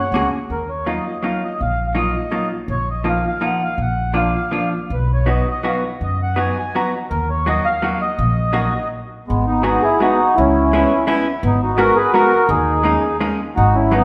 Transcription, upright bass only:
0.12 0.25 C#2 medium
0.50 0.98 D#2 medium
1.61 2.07 A#1 medium
2.68 3.16 A#1 medium
3.78 4.26 A#1 medium
4.90 5.38 B1 medium
6.01 6.48 F#2 medium
7.11 7.57 D#2 medium
8.19 8.66 A#1 medium
9.30 9.76 G#1 medium
10.38 10.84 C#2 medium
11.43 11.89 G#1 medium
12.49 12.95 D#2 loud
13.57 14.04 G#1 medium

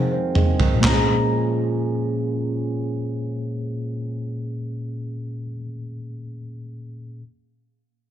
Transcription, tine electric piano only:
0.00 0.83 F3 soft
0.00 0.83 C4 soft
0.00 0.84 D#4 soft
0.00 0.85 G#4 soft
0.74 5.45 A#2 medium
0.81 5.52 A#3 medium
0.87 5.58 C#4 medium
0.93 5.64 G#4 medium

